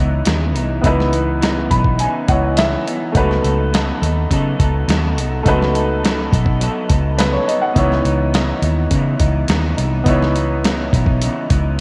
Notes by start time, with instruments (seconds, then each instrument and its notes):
Already playing: picked electric bass C#2, upright piano B3 D#4 E4 C#5, clean electric guitar D#4
0.00 clean electric guitar E3 B3
0.25 picked electric bass D#2, clean electric guitar C#3 E3 B3 D#4, snare, closed hi-hat
0.54 picked electric bass C2, clean electric guitar E3 B3 D#4, closed hi-hat
0.81 picked electric bass C#2, clean electric guitar C#3 E3 B3 D#4, upright piano B3 D#4 E4, kick, closed hi-hat
0.87 upright piano B4
1.00 snare
1.12 clean electric guitar E3 B3 D#4, closed hi-hat
1.41 clean electric guitar C#3 E3 B3 D#4, snare, closed hi-hat
1.69 picked electric bass B1, clean electric guitar E3 B3 D#4, upright piano B5, kick, closed hi-hat
1.84 kick
1.98 clean electric guitar C#3 E3 B3 D#4, upright piano G#5, closed hi-hat
2.28 picked electric bass C#2, clean electric guitar E3 B3 D#4, upright piano B3 E4 C#5 D#5 F#5, kick, closed hi-hat
2.56 clean electric guitar C#3 E3 B3 D#4, upright piano E5, snare, closed hi-hat
2.86 clean electric guitar E3 B3 D#4, closed hi-hat
3.12 picked electric bass C#2, clean electric guitar C#3 F#3, upright piano A3 D#4 F#4, kick, closed hi-hat
3.16 clean electric guitar B3 D#4 A4, upright piano B4
3.31 snare
3.43 picked electric bass C#2, clean electric guitar B3 D#4 A4, closed hi-hat
3.73 clean electric guitar C#3 F#3 B3 D#4 A4, snare, closed hi-hat
4.02 picked electric bass D#2, clean electric guitar B3 D#4 A4, closed hi-hat
4.30 picked electric bass C#3, clean electric guitar F#3 B3 D#4 A4, kick, closed hi-hat
4.59 picked electric bass C#2, clean electric guitar B3 D#4 A4, kick, closed hi-hat
4.88 picked electric bass D#2, clean electric guitar C#3 F#3 B3 D#4 A4, snare, closed hi-hat
5.17 picked electric bass C2, clean electric guitar B3 D#4 A4, closed hi-hat
5.43 picked electric bass C#2, clean electric guitar C#3 F#3 B3, upright piano A3 D#4 F#4, kick, closed hi-hat
5.47 clean electric guitar D#4 A4, upright piano B4
5.62 snare
5.74 clean electric guitar B3 D#4 A4, closed hi-hat
6.03 clean electric guitar C#3 F#3 B3 D#4 A4, snare, closed hi-hat
6.32 picked electric bass B1, clean electric guitar B3 D#4 A4, kick, closed hi-hat
6.46 kick
6.60 clean electric guitar F#3 B3 D#4 A4, closed hi-hat
6.89 picked electric bass C#2, clean electric guitar B3 D#4 A4, kick, closed hi-hat
7.17 clean electric guitar C#3 F#3 B3 D#4 A4, upright piano B4, snare, closed hi-hat
7.33 upright piano C#5
7.47 clean electric guitar B3 D#4 A4, upright piano D#5, closed hi-hat
7.62 upright piano F#5
7.73 picked electric bass C#2, clean electric guitar C#3 E3 B3, upright piano B3 D#4 E4, kick, closed hi-hat
7.78 clean electric guitar D#4, upright piano C#5
7.92 snare
8.04 picked electric bass C#2, clean electric guitar E3 B3 D#4, closed hi-hat
8.33 clean electric guitar C#3 E3 B3 D#4, snare, closed hi-hat
8.62 picked electric bass D#2, clean electric guitar E3 B3 D#4, closed hi-hat
8.91 picked electric bass C#3, clean electric guitar C#3 E3 B3 D#4, kick, closed hi-hat
9.19 picked electric bass C#2, clean electric guitar E3 B3 D#4, kick, closed hi-hat
9.48 picked electric bass D#2, clean electric guitar C#3 E3 B3 D#4, snare, closed hi-hat
9.77 picked electric bass C2, clean electric guitar E3 B3 D#4, closed hi-hat
10.04 picked electric bass C#2, clean electric guitar C#3 E3 B3, upright piano B3 D#4 E4, kick, closed hi-hat
10.08 clean electric guitar D#4, upright piano C#5
10.22 snare
10.35 clean electric guitar E3 B3 D#4, closed hi-hat
10.64 clean electric guitar C#3 E3 B3 D#4, snare, closed hi-hat
10.93 picked electric bass B1, clean electric guitar E3 B3 D#4, kick, closed hi-hat
11.06 kick
11.21 clean electric guitar C#3 E3 B3 D#4, closed hi-hat
11.50 picked electric bass C#2, clean electric guitar E3 B3 D#4, kick, closed hi-hat